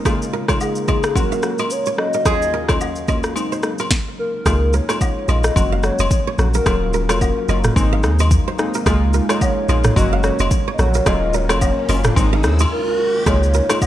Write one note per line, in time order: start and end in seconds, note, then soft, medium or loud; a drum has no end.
0.00 1.13 G#3 medium
0.00 1.12 A#3 medium
0.00 3.87 A#4 medium
0.05 0.45 C#3 medium
0.05 2.23 C#3 medium
0.05 0.45 G#3 medium
0.05 0.45 A#3 medium
0.05 0.45 D#4 medium
0.05 0.45 F4 loud
0.05 0.18 G#4 medium
0.05 kick loud
0.05 cross-stick medium
0.05 high agogo medium
0.05 shaker medium
0.22 shaker medium
0.33 0.46 A#4 medium
0.48 0.85 C#3 medium
0.48 0.85 G#3 medium
0.48 0.85 A#3 medium
0.48 0.85 D#4 medium
0.48 0.85 F4 medium
0.48 0.58 C#5 medium
0.48 kick medium
0.48 cross-stick medium
0.48 high agogo medium
0.48 shaker soft
0.61 1.18 G#4 medium
0.61 low woodblock medium
0.61 shaker medium
0.75 shaker soft
0.87 1.13 C#3 medium
0.87 1.13 G#3 medium
0.87 1.13 A#3 medium
0.87 1.14 D#4 medium
0.87 1.14 F4 medium
0.87 1.01 D#5 medium
0.87 kick medium
0.87 high agogo medium
0.87 shaker soft
1.03 cross-stick loud
1.03 shaker medium
1.15 1.41 F#3 medium
1.15 3.33 F#3 medium
1.15 1.41 A#3 medium
1.15 3.88 A#3 medium
1.15 1.41 C#4 medium
1.15 1.41 F#4 loud
1.15 1.73 A#4 loud
1.15 kick loud
1.15 high agogo medium
1.15 shaker medium
1.32 1.41 F5 medium
1.32 shaker soft
1.42 1.64 F#3 medium
1.42 1.64 A#3 medium
1.42 1.64 C#4 medium
1.42 1.64 F#4 medium
1.42 cross-stick medium
1.42 shaker soft
1.58 1.68 D#5 medium
1.58 high agogo medium
1.58 shaker medium
1.70 1.98 C#5 loud
1.70 shaker medium
1.86 1.96 C#5 medium
1.86 shaker medium
1.97 2.23 F#3 medium
1.97 2.24 A#3 medium
1.97 2.24 C#4 medium
1.97 2.24 F#4 medium
1.97 2.13 D#5 loud
1.97 cross-stick medium
2.13 2.26 A#4 medium
2.13 3.20 D#5 loud
2.13 shaker medium
2.25 2.65 D#2 medium
2.25 2.65 F#3 medium
2.25 2.65 A#3 medium
2.25 2.65 C#4 medium
2.25 3.89 D#4 medium
2.25 2.65 F4 medium
2.25 3.63 G#4 medium
2.25 kick loud
2.25 cross-stick medium
2.25 high agogo medium
2.25 shaker medium
2.42 shaker medium
2.54 2.66 A#4 medium
2.69 3.05 D#2 medium
2.69 3.05 F#3 medium
2.69 3.05 A#3 medium
2.69 3.05 C#4 medium
2.69 3.05 F4 medium
2.69 2.79 C#5 medium
2.69 kick medium
2.69 cross-stick medium
2.69 high agogo medium
2.69 shaker soft
2.81 low woodblock medium
2.81 shaker medium
2.96 shaker medium
3.08 3.34 D#2 medium
3.08 3.34 F#3 medium
3.08 3.34 A#3 medium
3.08 3.34 C#4 medium
3.08 3.34 F4 medium
3.08 3.21 D#5 medium
3.08 kick medium
3.08 high agogo medium
3.08 shaker soft
3.23 cross-stick medium
3.23 shaker soft
3.35 3.61 G#3 medium
3.35 3.61 A#3 medium
3.35 3.61 C4 medium
3.35 3.61 D#4 loud
3.35 high agogo medium
3.35 shaker medium
3.52 3.61 C5 medium
3.52 shaker soft
3.63 3.84 G#3 medium
3.63 3.84 A#3 medium
3.63 3.84 C4 medium
3.63 3.85 D#4 medium
3.63 cross-stick medium
3.63 shaker soft
3.78 3.89 A#4 medium
3.78 high agogo medium
3.78 shaker soft
3.91 kick loud
3.91 snare medium
4.19 4.76 A#4 loud
4.45 4.80 C#2 loud
4.45 7.73 C#3 medium
4.45 4.85 G#3 medium
4.45 4.85 A#3 medium
4.45 4.85 D#4 medium
4.45 4.86 F4 loud
4.45 4.59 G#4 medium
4.45 kick loud
4.45 cross-stick medium
4.45 high agogo medium
4.45 shaker medium
4.73 4.86 A#4 medium
4.73 5.31 C#5 loud
4.73 shaker medium
4.89 5.25 G#3 medium
4.89 5.25 A#3 medium
4.89 5.26 D#4 medium
4.89 5.26 F4 medium
4.89 4.99 C#5 medium
4.89 cross-stick medium
4.89 high agogo medium
4.89 shaker medium
5.01 kick medium
5.01 low woodblock medium
5.01 shaker medium
5.28 5.50 A#1 loud
5.28 5.54 G#3 medium
5.28 5.54 A#3 medium
5.28 5.54 D#4 medium
5.28 5.54 F4 medium
5.28 5.41 D#5 medium
5.28 5.86 D#5 loud
5.28 high agogo medium
5.28 shaker soft
5.44 cross-stick loud
5.44 shaker medium
5.56 5.91 F#1 loud
5.56 5.81 F#3 loud
5.56 7.74 F#3 medium
5.56 5.81 A#3 medium
5.56 5.82 C#4 medium
5.56 5.82 F#4 loud
5.56 7.74 A#4 medium
5.56 kick loud
5.56 high agogo medium
5.56 shaker medium
5.72 5.81 F5 medium
5.83 6.04 F#3 medium
5.83 6.04 A#3 medium
5.83 6.05 C#4 medium
5.83 6.05 F#4 medium
5.83 6.11 C#5 loud
5.83 cross-stick medium
5.83 shaker medium
5.99 6.08 F1 medium
5.99 6.09 D#5 medium
5.99 high agogo medium
5.99 shaker medium
6.11 6.52 C#5 loud
6.11 kick loud
6.11 shaker medium
6.27 6.36 C#5 medium
6.38 6.60 A#1 loud
6.38 6.64 F#3 medium
6.38 6.64 A#3 medium
6.38 6.64 C#4 medium
6.38 6.64 F#4 medium
6.38 cross-stick medium
6.38 shaker soft
6.54 6.64 A#4 medium
6.54 7.61 A#4 medium
6.54 shaker medium
6.66 7.11 D#1 loud
6.66 7.05 F#3 medium
6.66 7.06 A#3 medium
6.66 9.93 A#3 medium
6.66 7.06 C#4 medium
6.66 8.84 D#4 medium
6.66 7.06 F4 loud
6.66 6.79 G#4 medium
6.66 kick loud
6.66 cross-stick medium
6.66 high agogo medium
6.66 shaker medium
6.93 7.06 A#4 medium
6.93 shaker medium
7.09 7.31 F1 medium
7.09 7.46 F#3 medium
7.09 7.46 A#3 medium
7.09 7.46 C#4 medium
7.09 7.46 F4 medium
7.09 7.19 C#5 medium
7.09 cross-stick loud
7.09 high agogo medium
7.09 shaker medium
7.21 kick medium
7.21 low woodblock medium
7.21 shaker medium
7.48 7.70 F#1 loud
7.48 7.74 F#3 medium
7.48 7.74 A#3 medium
7.48 7.74 C#4 medium
7.48 7.74 F4 medium
7.48 7.62 D#5 medium
7.48 high agogo medium
7.48 shaker soft
7.64 cross-stick medium
7.64 mid tom loud
7.64 shaker medium
7.76 8.05 G#1 loud
7.76 8.02 G#3 medium
7.76 9.94 G#3 medium
7.76 8.02 A#3 medium
7.76 8.02 C4 medium
7.76 8.02 D#4 loud
7.76 kick loud
7.76 high agogo medium
7.76 shaker medium
7.93 8.02 F5 medium
8.03 8.38 D#2 medium
8.03 8.25 G#3 medium
8.03 8.25 A#3 medium
8.03 8.25 C4 medium
8.03 8.25 D#4 medium
8.03 cross-stick medium
8.03 shaker soft
8.19 8.29 D#5 medium
8.19 high agogo medium
8.19 shaker medium
8.31 kick loud
8.31 shaker medium
8.48 8.57 C5 medium
8.58 8.84 G#3 medium
8.58 8.84 A#3 medium
8.58 8.84 C4 medium
8.58 8.84 D#4 medium
8.58 cross-stick medium
8.58 shaker soft
8.74 8.84 A#4 medium
8.74 shaker medium
8.86 9.21 C#2 loud
8.86 11.04 C#3 medium
8.86 9.26 G#3 medium
8.86 9.26 A#3 medium
8.86 9.26 D#4 medium
8.86 9.26 F4 loud
8.86 8.99 G#4 medium
8.86 kick loud
8.86 cross-stick medium
8.86 riser medium
8.86 high agogo medium
8.86 shaker medium
9.13 9.27 A#4 medium
9.13 shaker medium
9.29 9.66 G#3 medium
9.29 9.66 A#3 medium
9.29 9.66 D#4 medium
9.29 9.66 F4 medium
9.29 9.39 C#5 medium
9.29 cross-stick medium
9.29 high agogo medium
9.29 shaker medium
9.41 9.98 C#5 loud
9.41 kick medium
9.41 low woodblock medium
9.41 shaker medium
9.68 9.91 A#1 medium
9.68 9.94 G#3 medium
9.68 9.94 A#3 medium
9.68 9.94 D#4 medium
9.68 9.95 F4 medium
9.68 9.82 D#5 medium
9.68 high agogo medium
9.68 shaker soft
9.84 cross-stick medium
9.84 mid tom loud
9.84 shaker medium
9.96 10.31 F#1 loud
9.96 10.22 F#3 loud
9.96 12.14 F#3 medium
9.96 10.22 A#3 medium
9.96 10.22 C#4 medium
9.96 12.14 C#4 medium
9.96 10.22 F#4 loud
9.96 12.14 A#4 medium
9.96 10.24 D#5 loud
9.96 kick loud
9.96 high agogo medium
9.96 shaker medium
10.13 10.22 F5 medium
10.23 10.45 F#3 medium
10.23 10.45 A#3 medium
10.23 10.45 C#4 medium
10.23 10.45 F#4 medium
10.23 10.70 C#5 loud
10.23 cross-stick medium
10.23 shaker medium
10.39 10.49 F1 medium
10.39 10.49 D#5 medium
10.39 high agogo medium
10.39 shaker medium
10.51 kick loud
10.51 shaker medium
10.68 10.77 C#5 medium
10.74 10.81 D#5 medium
10.79 11.01 A#1 medium
10.79 11.04 F#3 medium
10.79 11.04 A#3 medium
10.79 11.05 C#4 medium
10.79 11.05 F#4 medium
10.79 11.09 C#5 loud
10.79 cross-stick medium
10.79 shaker soft
10.94 11.04 A#4 medium
10.94 shaker medium
11.06 11.51 D#1 loud
11.06 13.24 D#3 medium
11.06 11.46 F#3 medium
11.06 11.46 A#3 medium
11.06 13.24 A#3 medium
11.06 11.46 C#4 medium
11.06 11.46 F4 loud
11.06 11.19 G#4 medium
11.06 11.36 D#5 loud
11.06 kick loud
11.06 cross-stick medium
11.06 high agogo medium
11.06 shaker medium
11.33 11.47 A#4 medium
11.33 11.89 C#5 medium
11.33 shaker medium
11.49 11.72 F1 medium
11.49 11.86 F#3 medium
11.49 11.86 A#3 medium
11.49 11.86 C#4 medium
11.49 11.86 F4 medium
11.49 11.59 C#5 medium
11.49 cross-stick loud
11.49 high agogo medium
11.49 shaker medium
11.61 kick medium
11.61 low woodblock medium
11.61 shaker medium
11.88 12.11 F#1 loud
11.88 12.14 F#3 medium
11.88 12.14 A#3 medium
11.88 12.15 C#4 medium
11.88 12.15 F4 medium
11.88 12.02 D#5 medium
11.88 open hi-hat medium
11.88 high agogo medium
11.88 shaker soft
12.04 cross-stick loud
12.04 mid tom loud
12.04 shaker medium
12.16 12.45 G#1 loud
12.16 12.42 G#3 loud
12.16 12.42 A#3 medium
12.16 12.42 C4 medium
12.16 12.42 D#4 loud
12.16 kick loud
12.16 high agogo medium
12.16 shaker medium
12.33 12.42 F5 medium
12.43 12.66 D#2 medium
12.43 12.65 G#3 medium
12.43 12.65 A#3 medium
12.43 12.65 C4 medium
12.43 12.65 D#4 medium
12.43 cross-stick medium
12.43 shaker soft
12.59 12.69 D#5 medium
12.59 high agogo medium
12.59 shaker medium
12.72 13.23 A#4 loud
13.26 13.61 C#2 loud
13.26 13.66 G#3 medium
13.26 13.66 A#3 medium
13.26 13.66 D#4 medium
13.26 13.66 F4 loud
13.26 13.39 G#4 medium
13.26 13.78 C#5 loud
13.26 kick loud
13.26 cross-stick medium
13.26 high agogo medium
13.26 shaker medium
13.43 shaker medium
13.54 13.67 A#4 medium
13.54 shaker medium
13.70 13.87 G#3 medium
13.70 13.87 A#3 medium
13.70 13.87 D#4 medium
13.70 13.87 F4 medium
13.70 13.79 C#5 medium
13.70 cross-stick loud
13.70 high agogo medium
13.70 shaker medium
13.82 13.87 C#5 loud
13.82 kick medium
13.82 low woodblock medium
13.82 shaker medium